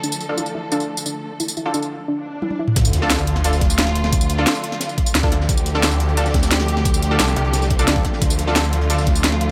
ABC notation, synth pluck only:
X:1
M:4/4
L:1/8
Q:1/4=176
K:Dm
V:1 name="Synth pluck"
D z E E D z D z | E E D z D z E E | z8 | z8 |
z8 | z8 | z8 |]